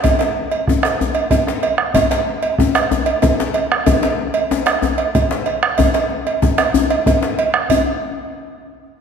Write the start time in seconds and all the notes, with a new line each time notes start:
0.04 bombo rim, bombo low, cowbell, djembe slap, djembe tone, djembe bass
0.19 cowbell, djembe slap
0.38 djembe slap
0.52 cowbell, djembe slap
0.67 bombo rim, bombo low, djembe tone
0.83 bombo rim, cowbell, djembe slap
0.99 bombo rim, djembe slap, djembe bass
1.15 bombo rim, cowbell
1.31 bombo low, cowbell, djembe slap, djembe tone
1.47 bombo rim, djembe slap
1.63 bombo rim, cowbell, djembe slap
1.78 bombo rim
1.94 bombo rim, bombo low, cowbell, djembe slap, djembe tone, djembe bass
2.11 cowbell, djembe slap
2.28 djembe slap
2.43 cowbell, djembe slap
2.58 bombo rim, bombo low, djembe tone
2.75 bombo rim, cowbell, djembe slap
2.91 bombo rim, djembe slap, djembe bass
3.06 cowbell
3.22 bombo low, cowbell, djembe slap, djembe tone
3.40 bombo rim, djembe slap
3.54 bombo rim, cowbell, djembe slap
3.72 bombo rim
3.86 bombo rim, bombo low, cowbell, djembe slap, djembe tone, djembe bass
4.03 cowbell, djembe slap
4.19 djembe slap
4.34 cowbell, djembe slap
4.51 bombo rim, djembe tone
4.66 bombo rim, cowbell, djembe slap
4.82 bombo rim, djembe slap, djembe bass
4.98 bombo rim, cowbell
5.15 bombo low, cowbell, djembe slap, djembe tone
5.31 bombo rim, djembe slap
5.46 bombo rim, cowbell, djembe slap
5.63 bombo rim
5.78 bombo rim, bombo low, cowbell, djembe tone, djembe bass
5.94 cowbell, djembe slap
6.10 djembe slap
6.27 cowbell, djembe slap
6.42 bombo rim, bombo low, djembe tone
6.58 bombo rim, cowbell, djembe slap
6.74 bombo rim, djembe bass
6.90 bombo rim, cowbell, djembe slap
7.06 bombo low, cowbell, djembe slap, djembe tone
7.23 bombo rim, djembe slap
7.39 cowbell
7.54 bombo rim
7.69 bombo low, cowbell, djembe bass